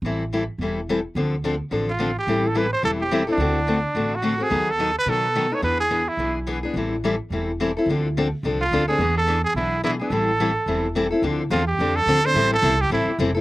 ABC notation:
X:1
M:4/4
L:1/8
Q:"Swing" 1/4=214
K:Am
V:1 name="Trumpet"
z8 | z4 z F2 G- | G A B c A G2 D- | D4- D ^F2 ^G- |
^G A2 B A3 ^c | B ^G2 E2 z3 | z8 | z4 z F2 ^G- |
^G A2 G E2 E A- | A6 z2 | [K:Dm] z2 F G2 A2 c- | c A2 G E2 z2 |]
V:2 name="Steel-string acoustic guitar"
[E,G,CEA] z [E,G,CEA] z [E,G,CEA] z [E,G,CEA] z | [D,F,CDA] z [D,F,CDA] z [D,F,CDA] z [D,F,CDA] z | [E,G,CEA] z [E,G,CEA] z [E,G,CEA] z [E,G,CEA] [CEA] | [D,A,C^FA] z [D,A,CFA] z [D,A,CFA] z [D,A,CFA] [CFA] |
[^D,^F,B,^DA] z [D,F,B,DA] z [D,F,B,DA] z [D,F,B,DA] [B,DA] | [E,B,D^G] z [E,B,DG] z [E,B,DG] z [E,B,DG] [B,DG] | [E,G,CEA] z [E,G,CEA] z [E,G,CEA] z [E,G,CEA] [CEA] | [D,F,CDA] z [D,F,CDA] z [D,F,CDA] z [D,F,CDA] [CDA] |
[E,B,D^G] z [E,B,DG] z [E,B,DG] z [E,B,DG] [B,DG] | [E,G,CEA] z [E,G,CEA] z [E,G,CEA] z [E,G,CEA] [CEA] | [K:Dm] [D,F,CDA] z [D,F,CDA] z [D,F,CDA] z [D,F,CDA] [CDA] | [E,G,CEA] z [E,G,CEA] z [E,G,CEA] z [E,G,CEA] [CEA] |]
V:3 name="Upright bass" clef=bass
A,,,4 E,,,4 | D,,4 A,,,4 | A,,,4 E,,,4 | D,,4 A,,,4 |
^D,,4 B,,4 | E,,4 B,,,4 | A,,,4 E,,,4 | D,,4 C,,2 D,,2 |
E,,4 B,,,4 | A,,,4 E,,,4 | [K:Dm] D,,2 E,,2 F,,2 D,,2 | A,,,2 C,,2 A,,, z F,,,2 |]